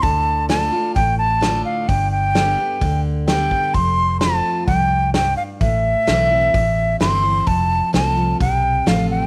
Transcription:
<<
  \new Staff \with { instrumentName = "Flute" } { \time 4/4 \key f \lydian \tempo 4 = 129 a''4 a''4 g''8 a''4 f''8 | g''8 g''2 r8 g''4 | c'''4 a''4 g''4 g''8 f''8 | e''2. c'''4 |
a''4 a''4 g''4 f''8 g''8 | }
  \new Staff \with { instrumentName = "Steel-string acoustic guitar" } { \time 4/4 \key f \lydian << { r4 <d a d' f'>8 <d' f'>8 r4 <d a d' f'>4 | r4 <d g b g'>8 <b g'>8 r4 <d g b g'>4 | r4 <f a c' f'>4 r2 | r4 <e a c' e'>8 <c' e'>8 r4 <e a c' e'>8 <c' e'>8 |
r4 <f a c' f'>8 <c' f'>8 r4 <f a c' f'>4 | } \\ { d2 a,2 | g,2 d2 | f,2 f,4 g,4 | a,2 e,2 |
f,2 c2 | } >> }
  \new Staff \with { instrumentName = "Fingered electric bass" } { \clef bass \time 4/4 \key f \lydian d,2 a,,2 | g,,2 d,2 | f,,2 c,2 | a,,4 b,,4 a,,4 g,,4 |
f,,4 c,4 b,,4 a,,4 | }
  \new DrumStaff \with { instrumentName = "Drums" } \drummode { \time 4/4 <hho bd>4 <hho sn>4 <hho bd>4 <hho sn>4 | <hho bd>4 <hho sn>4 <hho bd>4 <hho sn>8 bd8 | <hho bd>4 <hho sn>4 <hho bd>4 <hho sn>4 | <hho bd>4 <hho sn>4 <hho bd>4 <hho sn>4 |
<hho bd>4 <hho sn>4 <hho bd>4 <hho sn>4 | }
>>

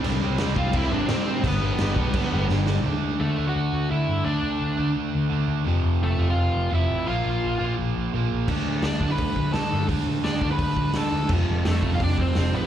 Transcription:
<<
  \new Staff \with { instrumentName = "Lead electric guitar" } { \time 4/4 \key d \dorian \tempo 4 = 170 r4. <f' f''>8 <e' e''>8 <d' d''>8 <c' c''>4 | <b b'>2. r4 | r4 <a a'>8. <fis' fis''>4~ <fis' fis''>16 <e' e''>4 | <d' d''>2 r2 |
r4 <a a'>8. <f' f''>4~ <f' f''>16 <e' e''>4 | <f' f''>2 r2 | r4 <d' d''>8. <b' b''>4~ <b' b''>16 <a' a''>4 | r4 <d' d''>8. <b' b''>4~ <b' b''>16 <a' a''>4 |
r4 <a a'>8. <f' f''>16 <d' d''>8 <c' c''>4 <b b'>8 | }
  \new Staff \with { instrumentName = "Overdriven electric guitar" } { \clef bass \time 4/4 \key d \dorian <c g c'>8 <c g c'>8 <c g c'>8 <c g c'>8 <c g c'>8 <c g c'>8 <c g c'>8 <c g c'>8 | <g, d g>8 <g, d g>8 <g, d g>8 <g, d g>8 <g, d g>8 <g, d g>8 <g, d g>8 <g, d g>8 | <d a d'>1 | <d a d'>1 |
<f, c f>1 | <bes, f bes>1 | <d a d'>1 | <d a d'>1 |
<f, c f>1 | }
  \new Staff \with { instrumentName = "Overdriven electric guitar" } { \clef bass \time 4/4 \key d \dorian <c g c'>8 <c g c'>8 <c g c'>8 <c g c'>8 <c g c'>8 <c g c'>8 <c g c'>8 <c g c'>8 | <g, d g>8 <g, d g>8 <g, d g>8 <g, d g>8 <g, d g>8 <g, d g>8 <g, d g>8 <g, d g>8 | <d a d'>4. <d a d'>4. <d a d'>4 | <d a d'>4. <d a d'>4. <d a d'>4 |
<f, c f>4. <f, c f>4. <f, c f>4 | <bes, f bes>4. <bes, f bes>4. <bes, f bes>4 | <d a d'>4. <d a d'>4. <d a d'>4 | <d a d'>4. <d a d'>4. <d a d'>4 |
<f, c f>4. <f, c f>4. <f, c f>4 | }
  \new Staff \with { instrumentName = "Picked electric bass" } { \clef bass \time 4/4 \key d \dorian c,8 c,8 c,8 c,8 c,8 a,,8 a,4 | g,,4 g,,8 b,,8 d,8 g,,8 g,,4 | d,8 d,8 d,8 d,8 d,8 d,8 d,8 g,8 | d,8 d,8 d,8 d,8 d,8 d,8 d,8 d,8 |
f,,8 f,,8 f,,8 f,,8 f,,8 f,,8 f,,8 a,,8 | bes,,8 bes,,8 bes,,8 bes,,8 bes,,8 bes,,8 bes,,8 bes,,8 | d,8 d,8 d,8 d,8 d,8 d,8 d,8 g,8 | d,8 d,8 d,8 d,8 d,8 d,8 d,8 d,8 |
f,,8 f,,8 f,,8 f,,8 f,,8 f,,8 f,,8 a,,8 | }
  \new DrumStaff \with { instrumentName = "Drums" } \drummode { \time 4/4 cymc4 <cymc sn>8 bd8 <cymc bd>4 <cymc sn>4 | <cymc bd>4 <cymc sn>8 bd8 <cymc bd>4 sn8 sn8 | r4 r4 r4 r4 | r4 r4 r4 r4 |
r4 r4 r4 r4 | r4 r4 r4 r4 | <cymc bd>4 <hho sn>8 bd8 <hho bd>8 bd8 <hho sn>4 | <hho bd>4 <hho sn>8 bd8 <hho bd>8 bd8 <hho sn>4 |
<cymc bd>4 <hho sn>8 bd8 <hho bd>8 bd8 <hho sn>4 | }
>>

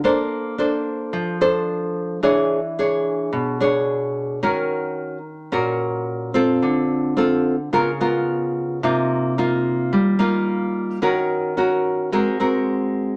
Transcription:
\new Staff \with { instrumentName = "Nylon-string guitar" } { \time 4/4 \key ees \lydian \tempo 4 = 109 << { <d' a' c''>4 <d' a' c''>4. <d' a' c''>4. | <d' gis' cis''>8 r8 <d' gis' cis''>4. <d' gis' cis''>4. | <des' ges' bes'>4. r8 <des' ges' bes'>4. <c' f' a'>8~ | <c' f' a'>4 <c' f' a'>8 r8 <ces' f' bes'>8 <ces' f' bes'>4. |
<bes ees' f'>4 <bes ees' f'>4. <bes ees' f'>4. | <des' ges' bes'>4 <des' ges' bes'>4 <c' ges' bes'>8 <c' ges' bes'>4. | } \\ { bes2 f2 | e2 b,2 | ees2 bes,2 | d2 des2 |
c2 g2 | ees2 aes2 | } >> }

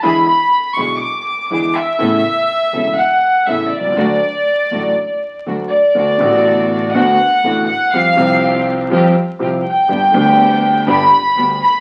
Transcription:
<<
  \new Staff \with { instrumentName = "Violin section" } { \time 4/4 \key d \major \tempo 4 = 122 b''8 b''4 cis'''8 d'''4 d'''8 e''8~ | e''2 fis''4 e''8 d''8~ | d''2. r8 d''8~ | d''2 fis''4. fis''8 |
f''4. r2 g''8~ | g''2 b''4. b''8 | }
  \new Staff \with { instrumentName = "String section" } { \time 4/4 \key d \major <d' e' gis'>8 r4 <d' e' gis'>8 r4 <d' e' gis'>8 r8 | <b cis' a'>8 r4 <b cis' a'>8 r4 <b cis' a'>8 r8 | <a d' fis'>8 r4 <a d' fis'>8 r4 <a d' fis'>8 r8 | <b d' fis'>8 <b d' fis'>4. <b d' fis'>8 r8 <b d' fis'>8 r8 |
<c' f' g'>8 <c' f' g'>4. <c' f' g'>8 r8 <c' f' g'>8 r8 | <b d' g'>8 <b d' g'>4. <b d' g'>8 r8 <b d' g'>8 r8 | }
  \new Staff \with { instrumentName = "Grand piano" } { \clef bass \time 4/4 \key d \major <e, d e gis b e'>8 r4 <b,, b, d gis b e'>8 r4 <e, d e gis b e'>8 r8 | <a,, a, cis a b e'>8 r4 <e,, e, cis a b e'>8 r4 <a,, a, cis a b e'>8 r32 b,,32 c,32 cis,32 | <d, d fis a fis'>8 r4 <a,, a, d fis a fis'>8 r4 <d, d fis a fis'>8 r8 | <d, d a b fis'>8 <a,, a, d a b fis'>4. <d, d a b fis'>8 r8 <a,, a, d a b fis'>8 r8 |
<f, f g c' g'>8 <c, c f g c' g'>4. <f, f g c' g'>8 r8 <c, c f g c' g'>8 r8 | <g,, g, d g b g'>8 <d, d g b g'>4. <g,, g, d g b g'>8 r8 <d, d g b g'>8 r8 | }
  \new Staff \with { instrumentName = "Upright bass" } { \clef bass \time 4/4 \key d \major e,16. r4 r32 b,,16. r4 r32 e,16. r8 r32 | a,,16. r4 r32 e,,16. r4 r32 a,,16. r16 b,,32 c,32 cis,32 | d,16. r4 r32 a,,16. r4 r32 d,16. r8 r32 | d,16. r32 a,,4~ a,,16. r32 d,16. r8 r32 a,,16. r8 r32 |
f,16. r32 c,4~ c,16. r32 f,16. r8 r32 c,16. r8 r32 | g,,16. r32 d,4~ d,16. r32 g,,16. r8 r32 d,16. r8 r32 | }
>>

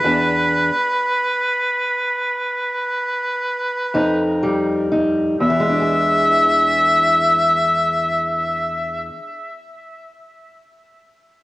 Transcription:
<<
  \new Staff \with { instrumentName = "Harmonica" } { \time 12/8 \key e \mixolydian \tempo 4. = 40 b'1~ b'4 r4 | e''1. | }
  \new Staff \with { instrumentName = "Steel-string acoustic guitar" } { \clef bass \time 12/8 \key e \mixolydian << { d'4 r2. r8 dis'8 g8 dis'8 | <e gis d' gis'>1. | } \\ { e,4 r2. r8 f,4. | e,1. | } >> }
>>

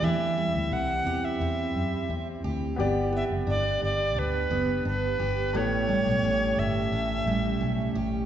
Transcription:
<<
  \new Staff \with { instrumentName = "Recorder" } { \time 4/4 \key g \major \tempo 4 = 87 e''4 fis''8. e''4. r8. | r8 e''8 d''8 d''8 b'4 b'4 | cis''4. e''2 r8 | }
  \new Staff \with { instrumentName = "Felt piano" } { \time 4/4 \key g \major <c' g' e''>2.~ <c' g' e''>8 r8 | <b g' d''>1 | <a g' cis''>1 | }
  \new Staff \with { instrumentName = "Ambient pad" } { \time 4/4 \key g \major << { g'1~ | g'1~ | g'1 | } \\ { <c' e'>1 | <b d'>1 | <a cis'>1 | } >> }
  \new Staff \with { instrumentName = "Steel-string acoustic guitar" } { \time 4/4 \key g \major <e g'>8 g8 c'8 g'8 c'4 c'8 g'8 | g'8 b8 d'8 g'8 d'8 b8 d'8 g'8 | <a, g'>8 g8 cis'8 g'8 cis'8 g8 cis'8 g'8 | }
  \new Staff \with { instrumentName = "Fingered electric bass" } { \clef bass \time 4/4 \key g \major e,8. d,16 c,8 e,8 e,8 fis,8 e,8 d,8 | g,,8. fis,,16 g,,8 g,,8 d,8 fis,,8 g,,8 g,,8 | a,,8. b,,16 a,,8 g,,8 a,,8 a,,8 b,,8 a,,8 | }
>>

